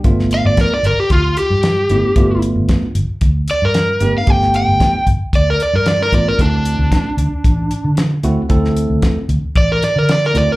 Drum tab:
HH |x-x-x-x-x-x-x-x-|x-x-x-x-x-x-x-x-|x-x-x-x-x-x-x-x-|x-x-x-x-x-x-x-x-|
SD |-o--o-------o---|----o-------o---|-o--o-------oo--|----o-------o---|
BD |o---o---o-------|o---o---o-------|o---o-o-o-----o-|o---o---o-------|

HH |x-x-x-x-x-x-x-x-|
SD |-o--o-----o-oo--|
BD |o---o---o-------|